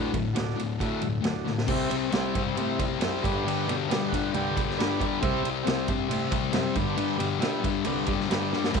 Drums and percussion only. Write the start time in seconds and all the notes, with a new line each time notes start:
0.14 kick, ride
0.36 snare, ride
0.49 snare
0.59 ride
0.80 kick, ride
1.01 ride
1.24 snare, ride
1.47 snare
1.58 snare
1.68 kick, crash
1.91 ride
2.12 snare, ride
2.35 kick, ride
2.57 ride
2.79 kick, ride
3.01 snare, ride
3.24 kick, ride
3.48 ride
3.69 ride
3.91 snare, ride
4.13 kick, ride
4.34 ride
4.57 kick, ride
4.70 snare
4.80 snare, ride
5.01 kick, ride
5.22 kick, ride
5.45 ride
5.67 snare, ride
5.88 kick, ride
6.11 ride
6.32 kick, ride
6.53 snare, ride
6.75 kick, ride
6.97 ride
7.20 ride
7.42 snare, ride
7.64 kick, ride
7.84 ride
8.06 kick, ride
8.20 snare
8.31 snare, ride
8.53 snare
8.64 snare
8.74 kick, crash